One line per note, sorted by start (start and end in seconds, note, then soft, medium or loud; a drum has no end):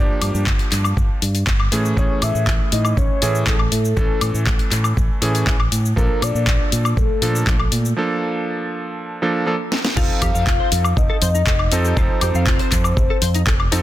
0.00 1.19 F3 medium
0.00 1.19 A#3 medium
0.00 1.19 D4 medium
0.00 1.20 G4 medium
0.00 0.43 D5 loud
0.22 0.32 G2 medium
0.22 open hi-hat loud
0.22 high woodblock medium
0.22 shaker medium
0.34 0.45 G2 medium
0.34 shaker soft
0.47 0.57 G1 medium
0.47 kick loud
0.47 clap loud
0.47 shaker soft
0.59 open hi-hat medium
0.72 0.92 G2 medium
0.72 clap soft
0.72 open hi-hat loud
0.72 shaker medium
0.84 high woodblock medium
0.84 shaker soft
0.97 1.07 G1 medium
0.97 kick loud
0.97 shaker soft
1.22 1.42 G2 medium
1.22 open hi-hat loud
1.22 shaker medium
1.35 open hi-hat medium
1.35 shaker soft
1.47 1.67 G1 loud
1.47 kick loud
1.47 clap loud
1.47 shaker soft
1.60 high woodblock medium
1.72 1.92 A2 medium
1.72 1.94 E3 medium
1.72 1.94 A3 medium
1.72 1.94 C#4 medium
1.72 1.94 G#4 medium
1.72 open hi-hat loud
1.72 shaker medium
1.85 shaker soft
1.96 2.07 A1 medium
1.96 3.19 E3 medium
1.96 3.19 A3 medium
1.96 3.19 C#4 medium
1.96 3.20 G#4 medium
1.96 2.21 C#5 loud
1.96 kick loud
1.96 shaker soft
2.22 2.32 A2 medium
2.22 2.69 E5 loud
2.22 open hi-hat loud
2.22 high woodblock medium
2.22 shaker medium
2.35 2.45 A2 medium
2.35 shaker soft
2.47 2.57 A1 medium
2.47 kick loud
2.47 clap loud
2.47 shaker soft
2.72 2.92 A2 medium
2.72 2.96 D#5 loud
2.72 open hi-hat loud
2.72 shaker medium
2.85 high woodblock medium
2.85 shaker soft
2.97 3.07 A1 medium
2.97 3.44 C#5 loud
2.97 kick loud
2.97 shaker soft
3.22 3.42 A2 medium
3.22 3.44 E3 medium
3.22 3.44 A3 medium
3.22 3.44 C#4 medium
3.22 3.44 G#4 medium
3.22 open hi-hat loud
3.22 shaker medium
3.35 shaker soft
3.47 3.67 A1 loud
3.47 3.53 E3 medium
3.47 3.54 A3 medium
3.47 3.54 C#4 medium
3.47 3.54 G#4 medium
3.47 3.70 A4 medium
3.47 kick loud
3.47 clap loud
3.47 shaker soft
3.59 high woodblock medium
3.72 3.92 A2 medium
3.72 4.43 A4 medium
3.72 open hi-hat loud
3.72 shaker medium
3.85 shaker soft
3.96 4.07 A1 medium
3.96 5.19 E3 medium
3.96 5.19 A3 medium
3.96 5.19 C#4 medium
3.96 5.20 A4 medium
3.96 kick loud
3.96 shaker soft
4.21 4.32 A2 loud
4.21 open hi-hat loud
4.21 high woodblock medium
4.21 shaker medium
4.34 4.44 A2 medium
4.34 shaker soft
4.47 4.57 A1 medium
4.47 kick loud
4.47 clap loud
4.47 shaker soft
4.59 open hi-hat medium
4.71 4.92 A2 medium
4.71 clap soft
4.71 open hi-hat loud
4.71 shaker medium
4.84 high woodblock medium
4.84 shaker soft
4.97 5.07 A1 medium
4.97 kick loud
4.97 shaker soft
5.22 5.42 A2 medium
5.22 5.44 E3 medium
5.22 5.44 A3 medium
5.22 5.44 C#4 medium
5.22 5.44 G#4 medium
5.22 open hi-hat loud
5.22 shaker medium
5.35 open hi-hat medium
5.35 shaker soft
5.46 5.67 A1 loud
5.46 5.53 E3 medium
5.46 5.53 A3 medium
5.46 5.54 C#4 medium
5.46 5.54 G#4 medium
5.46 kick loud
5.46 clap loud
5.46 shaker soft
5.60 high woodblock medium
5.72 5.92 A2 medium
5.72 open hi-hat medium
5.72 shaker medium
5.85 shaker soft
5.96 6.07 A#1 medium
5.96 7.19 F3 medium
5.96 7.19 A#3 medium
5.96 7.19 D4 medium
5.96 7.20 A4 medium
5.96 6.25 A#4 loud
5.96 kick loud
5.96 shaker soft
6.22 6.32 A#2 loud
6.22 6.97 D5 loud
6.22 open hi-hat medium
6.22 high woodblock medium
6.22 shaker medium
6.35 6.45 A#2 medium
6.35 shaker soft
6.47 6.57 A#1 medium
6.47 kick loud
6.47 clap loud
6.47 shaker soft
6.72 6.92 A#2 medium
6.72 open hi-hat loud
6.72 shaker medium
6.85 high woodblock medium
6.85 shaker soft
6.97 7.07 A#1 medium
6.97 7.94 A4 loud
6.97 kick loud
6.97 shaker soft
7.22 7.42 A#2 medium
7.22 7.44 F3 medium
7.22 7.44 A#3 medium
7.22 7.44 D4 medium
7.22 7.44 A4 medium
7.22 open hi-hat loud
7.22 shaker medium
7.35 shaker soft
7.47 7.67 A#1 loud
7.47 7.54 A#3 medium
7.47 7.54 A4 medium
7.47 kick loud
7.47 clap loud
7.47 shaker soft
7.59 high woodblock medium
7.72 7.92 A#2 medium
7.72 open hi-hat loud
7.72 shaker medium
7.85 shaker soft
7.96 9.19 F3 medium
7.96 9.19 A#3 medium
7.96 9.19 D4 medium
7.96 9.20 A4 medium
9.22 9.44 F3 medium
9.22 9.44 A#3 medium
9.22 9.44 D4 medium
9.22 9.44 A4 medium
9.46 9.53 F3 medium
9.46 9.53 A#3 medium
9.46 9.54 D4 medium
9.46 9.54 A4 medium
9.72 snare medium
9.85 snare medium
9.96 10.07 F1 loud
9.96 11.19 F3 medium
9.96 11.19 C4 medium
9.96 11.19 D#4 medium
9.96 10.01 F4 loud
9.96 11.20 A4 medium
9.96 10.93 F5 loud
9.96 kick loud
9.96 crash loud
9.96 shaker soft
10.22 10.32 F2 medium
10.22 10.28 G4 medium
10.22 kick medium
10.22 open hi-hat loud
10.22 high woodblock medium
10.22 shaker medium
10.35 10.45 F2 medium
10.35 10.44 F5 medium
10.35 shaker soft
10.47 10.57 F1 loud
10.47 10.56 F4 medium
10.47 kick loud
10.47 clap loud
10.47 shaker soft
10.60 10.69 C5 loud
10.72 10.92 F2 medium
10.72 open hi-hat loud
10.72 shaker medium
10.84 high woodblock medium
10.84 shaker soft
10.97 11.07 F1 medium
10.97 11.98 D#5 loud
10.97 kick loud
10.97 shaker soft
11.10 11.16 A4 medium
11.22 11.42 F2 medium
11.22 11.28 C5 medium
11.22 open hi-hat loud
11.22 shaker medium
11.35 11.41 D#4 medium
11.35 shaker soft
11.47 11.67 F1 loud
11.47 11.53 A4 medium
11.47 kick loud
11.47 clap loud
11.47 shaker soft
11.59 high woodblock medium
11.72 11.92 F2 medium
11.72 11.94 F3 medium
11.72 11.94 C4 medium
11.72 11.94 D#4 medium
11.72 11.78 D#4 medium
11.72 11.94 A4 medium
11.72 open hi-hat loud
11.72 shaker medium
11.85 11.94 G4 medium
11.85 shaker soft
11.96 12.07 F1 medium
11.96 13.19 F3 medium
11.96 13.19 C4 medium
11.96 13.19 D#4 medium
11.96 12.01 F4 loud
11.96 13.20 A4 medium
11.96 12.21 C5 loud
11.96 kick loud
11.96 shaker soft
12.21 12.32 F2 loud
12.21 12.29 G4 medium
12.21 13.68 C5 medium
12.21 open hi-hat loud
12.21 high woodblock medium
12.21 shaker medium
12.34 12.45 F2 medium
12.34 12.44 F5 medium
12.34 shaker soft
12.47 12.57 F1 loud
12.47 12.57 F4 medium
12.47 kick loud
12.47 clap loud
12.47 shaker soft
12.59 12.69 C5 loud
12.59 open hi-hat medium
12.72 12.92 F2 medium
12.72 kick medium
12.72 clap soft
12.72 open hi-hat loud
12.72 shaker medium
12.84 high woodblock medium
12.84 shaker soft
12.97 13.07 F1 medium
12.97 kick loud
12.97 shaker soft
13.10 13.16 A4 medium
13.22 13.42 F2 medium
13.22 13.28 C5 medium
13.22 open hi-hat loud
13.22 shaker medium
13.35 13.41 D#4 medium
13.35 open hi-hat medium
13.35 shaker soft
13.47 13.67 F1 loud
13.47 13.53 A4 medium
13.47 kick loud
13.47 clap loud
13.47 shaker soft
13.60 high woodblock medium
13.71 13.82 F2 medium
13.71 13.82 F3 medium
13.71 13.82 C4 medium
13.71 13.82 D#4 medium
13.71 13.78 D#4 medium
13.71 13.82 A4 medium
13.71 open hi-hat loud
13.71 shaker medium